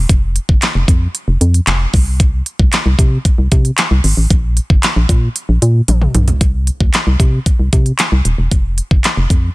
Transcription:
0.09 fm bass F1, kick, closed hi-hat
0.36 closed hi-hat
0.49 fm bass G1, kick
0.62 snare, clap, closed hi-hat
0.75 fm bass F1
0.88 fm bass F2, kick, closed hi-hat
1.15 closed hi-hat
1.28 fm bass F1
1.41 fm bass F2, closed hi-hat
1.54 closed hi-hat
1.67 fm bass F1, snare, clap, closed hi-hat
1.94 fm bass C2, kick, open hi-hat
2.20 kick, closed hi-hat
2.46 closed hi-hat
2.59 fm bass C2, kick
2.73 snare, clap, closed hi-hat
2.86 fm bass C2
2.99 fm bass C3, kick, closed hi-hat
3.25 kick, closed hi-hat
3.38 fm bass C2
3.52 fm bass C3, kick, closed hi-hat
3.65 closed hi-hat
3.78 snare, clap, closed hi-hat
3.91 fm bass C2
4.04 fm bass G#1, open hi-hat
4.17 fm bass A1
4.30 fm bass A#1, kick, closed hi-hat
4.57 closed hi-hat
4.70 fm bass G1, kick
4.83 snare, clap, closed hi-hat
4.96 fm bass A#1
5.09 fm bass A#2, kick, closed hi-hat
5.36 closed hi-hat
5.49 fm bass A#1
5.62 fm bass A#2, closed hi-hat
5.88 fm bass A#1, closed hi-hat, high tom
6.02 mid tom
6.15 fm bass B1, closed hi-hat, mid tom
6.28 closed hi-hat, floor tom
6.41 fm bass C2, kick, closed hi-hat
6.67 closed hi-hat
6.80 fm bass D2, kick
6.94 snare, clap, closed hi-hat
7.07 fm bass C2
7.20 fm bass C3, kick, closed hi-hat
7.46 kick, closed hi-hat
7.59 fm bass C2
7.73 fm bass C3, kick, closed hi-hat
7.86 closed hi-hat
7.99 snare, clap, closed hi-hat
8.12 fm bass C2
8.25 fm bass D#1, closed hi-hat
8.38 fm bass E1
8.51 fm bass F1, kick, closed hi-hat
8.78 closed hi-hat
8.91 fm bass G1, kick
9.04 snare, clap, closed hi-hat
9.17 fm bass F1
9.30 fm bass F2, kick, closed hi-hat

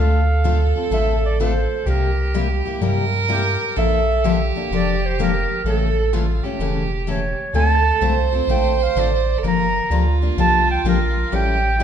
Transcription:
Already playing: analog synth bass D2, steel-string acoustic guitar D3 A3 C4, violin A4
0.00 steel-string acoustic guitar F4 A4, clarinet F5
0.44 steel-string acoustic guitar D3 A3 C4 F4 A4
0.76 steel-string acoustic guitar C4 F4 A4
0.91 analog synth bass A1, steel-string acoustic guitar D3 A3 C4 F4 A4, clarinet E5
1.26 clarinet D5
1.40 steel-string acoustic guitar D3 A3 C4 F4 A4, clarinet C5
1.86 analog synth bass C2, steel-string acoustic guitar C3 G3 A#3 E4 G4, violin G4, clarinet A#4
2.34 steel-string acoustic guitar C3 G3 A#3 E4 G4
2.65 steel-string acoustic guitar A#3 E4 G4
2.81 analog synth bass G2, steel-string acoustic guitar C3 G3 A#3 E4 G4, violin A#4
3.28 steel-string acoustic guitar C3 G3 A#3 E4 G4, clarinet G4
3.76 analog synth bass A#1, steel-string acoustic guitar D3 F3 A#3 D4 A4, violin A4, clarinet E5
4.24 steel-string acoustic guitar D3 F3 A#3 D4 A4, violin G4
4.56 steel-string acoustic guitar A#3 D4 A4
4.71 analog synth bass F1, steel-string acoustic guitar D3 F3 A#3 D4 A4
4.75 clarinet D5
5.06 clarinet C5
5.19 steel-string acoustic guitar D3 F3 A#3 D4 A4, clarinet A#4
5.64 analog synth bass A1, steel-string acoustic guitar C#3 E3 A3 C#4 A4, violin A4
5.69 clarinet A4
6.13 steel-string acoustic guitar C#3 E3 A3 C#4 A4, violin F4
6.44 steel-string acoustic guitar A3 C#4 A4, violin G4
6.59 analog synth bass E1, steel-string acoustic guitar C#3 E3 A3 C#4 A4
7.07 steel-string acoustic guitar C#3 E3 A3 C#4 A4, clarinet C#5
7.54 analog synth bass D2, steel-string acoustic guitar D3 A3 C4 F4 A4, violin A4, clarinet A5
8.01 analog synth bass C2, steel-string acoustic guitar D3 A3 C4 F4 A4, violin C5
8.33 steel-string acoustic guitar C4 F4 A4
8.47 analog synth bass A#1, steel-string acoustic guitar D3 A3 C4 F4 A4, clarinet G5
8.83 clarinet F5
8.95 analog synth bass A1, steel-string acoustic guitar D3 A3 C4 F4 A4, clarinet D5
9.38 violin A4
9.43 analog synth bass G1, steel-string acoustic guitar D3 F3 A#3 D4 G4, violin A#4
9.48 clarinet A#5
9.90 analog synth bass D2, steel-string acoustic guitar D3 F3 A#3 D4 G4, violin F4
10.22 steel-string acoustic guitar A#3 D4 G4
10.37 analog synth bass C2, steel-string acoustic guitar D3 F3 A#3 D4 G4, clarinet A5
10.71 clarinet G5
10.84 analog synth bass A#1, steel-string acoustic guitar D3 F3 A#3 D4 G4
10.88 clarinet A#4
11.32 analog synth bass A1, steel-string acoustic guitar E3 G3 C#4 E4 A4, violin G4, clarinet G5
11.79 steel-string acoustic guitar E3 G3 C#4 E4, violin E4

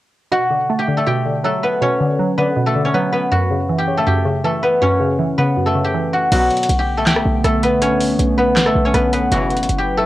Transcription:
0.32 synth pluck B2, guzheng F#4 F#5
0.50 synth pluck D3
0.70 synth pluck A3
0.79 guzheng G4 G5
0.88 synth pluck D3
0.97 guzheng A3 A4
1.06 synth pluck B2, guzheng G4 G5
1.26 synth pluck D3
1.44 synth pluck F#3, guzheng A3 A4
1.63 guzheng B3 B4
1.81 synth pluck B2, guzheng C#4 C#5
2.00 synth pluck D3
2.19 synth pluck F#3
2.38 synth pluck D3, guzheng B3 B4
2.56 synth pluck B2
2.66 guzheng A3 A4
2.76 synth pluck D3
2.85 guzheng C#4 C#5
2.94 synth pluck F#3, guzheng B3 B4
3.13 guzheng B3 B4
3.32 synth pluck F#2, guzheng F#4 F#5
3.51 synth pluck C#3
3.69 synth pluck E3
3.78 guzheng G4 G5
3.88 synth pluck C#3
3.97 guzheng A3 A4
4.07 synth pluck F#2, guzheng G4 G5
4.25 synth pluck C#3
4.44 synth pluck E3, guzheng A3 A4
4.63 guzheng B3 B4
4.82 synth pluck F#2, guzheng C#4 C#5
5.00 synth pluck C#3
5.19 synth pluck E3
5.38 synth pluck C#3, guzheng B3 B4
5.57 synth pluck F#2
5.66 guzheng A3 A4
5.75 synth pluck C#3
5.84 guzheng G4 G5
5.94 synth pluck E3
6.13 guzheng F#4 F#5
6.32 808-style bass B1, brass ensemble B2 D3 F#3, analog synth pad D3 A3 B3, guzheng F#4 F#5, closed hi-hat, crash
6.50 closed hi-hat
6.57 closed hi-hat
6.63 closed hi-hat
6.69 808-style bass B1, closed hi-hat
6.79 guzheng G4 G5
6.97 guzheng A3 A4
7.06 808-style bass D2, guzheng G4 G5, snare, clap, closed hi-hat
7.16 808-style bass B1, cross-stick
7.25 808-style bass B1
7.44 808-style bass B1, guzheng A3 A4, cross-stick, closed hi-hat
7.63 guzheng B3 B4, closed hi-hat
7.82 guzheng C#4 C#5, closed hi-hat
7.91 808-style bass C#2
8.00 open hi-hat
8.19 808-style bass B1, closed hi-hat
8.38 guzheng B3 B4
8.56 snare, clap, closed hi-hat
8.66 guzheng A3 A4, cross-stick
8.75 808-style bass B1
8.85 guzheng C#4 C#5
8.94 808-style bass B1, guzheng B3 B4, cross-stick, closed hi-hat
9.13 guzheng B3 B4, closed hi-hat
9.32 808-style bass F#1, brass ensemble B2 C#3 E3, analog synth pad F#3 E4 B4, guzheng F#4 F#5, closed hi-hat
9.50 closed hi-hat
9.57 808-style bass G1, closed hi-hat
9.63 closed hi-hat
9.69 808-style bass F#1, closed hi-hat
9.78 guzheng G4 G5
9.97 guzheng A3 A4

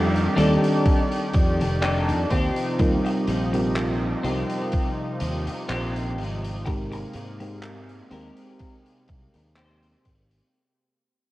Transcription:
Already playing: fingered electric bass F2, fm electric piano D#3 G3 C4 D4 D#4 A4 D5, analog synth pad D#3 G4 D5
0.16 closed hi-hat
0.36 fingered electric bass D#2, fm electric piano D#3 G3 C4 A4 D5, clean electric guitar D4 D#4 G4 A4, closed hi-hat
0.64 closed hi-hat
0.86 kick, closed hi-hat
1.12 closed hi-hat
1.33 fingered electric bass F2, kick, closed hi-hat
1.60 fingered electric bass F1, muted clean electric guitar stroke, closed hi-hat
1.82 clean electric guitar D4 D#4 G4 A4, clap, closed hi-hat
2.09 fingered electric bass F2, closed hi-hat
2.30 fingered electric bass D#2, analog synth pad C3 F3 D#4, clean electric guitar C4 F4 G4, kick, closed hi-hat
2.56 closed hi-hat
2.79 fingered electric bass D#2, fm electric piano G3 C4 D#4 F4 A#4, kick, closed hi-hat
3.05 muted clean electric guitar stroke, closed hi-hat
3.27 fingered electric bass A#1, muted clean electric guitar stroke, closed hi-hat
3.53 fm electric piano G3 C4 D#4 F4 A#4, muted clean electric guitar stroke, closed hi-hat
3.75 muted clean electric guitar stroke, clap, closed hi-hat
4.24 fingered electric bass C2, fm electric piano G3 C4 D#4 F4 A#4, clean electric guitar C4 F4 G4, closed hi-hat
4.50 closed hi-hat
4.72 kick, closed hi-hat
5.20 fingered electric bass D#2, closed hi-hat
5.47 muted clean electric guitar stroke, muted fingered electric bass stroke, closed hi-hat
5.69 fingered electric bass A#1, clean electric guitar C4 F4 G4, clap, closed hi-hat
5.96 closed hi-hat
6.18 fingered electric bass G#1, closed hi-hat
6.44 closed hi-hat
6.65 fm electric piano G#3 C4 D#4 G4 A#4, analog synth pad G#3 A#3, muted clean electric guitar stroke, kick, closed hi-hat
6.92 muted clean electric guitar stroke, closed hi-hat
7.13 fingered electric bass G#2, muted clean electric guitar stroke, closed hi-hat
7.40 fm electric piano G#3 C4 D#4 G4 A#4, muted clean electric guitar stroke, closed hi-hat
7.63 muted clean electric guitar stroke, clap, closed hi-hat
7.89 closed hi-hat
8.11 fingered electric bass D#2, fm electric piano G#3 C4 D#4 G4 A#4, clean electric guitar C4 G4 A#4, closed hi-hat
8.37 closed hi-hat
8.59 kick, closed hi-hat
8.86 closed hi-hat
9.08 fingered electric bass C2, kick, closed hi-hat
9.34 fingered electric bass D#2, muted clean electric guitar stroke, closed hi-hat
9.56 clean electric guitar C4 G4 C5, clap, closed hi-hat
9.83 closed hi-hat
10.05 fingered electric bass G#1, kick, closed hi-hat
10.31 closed hi-hat

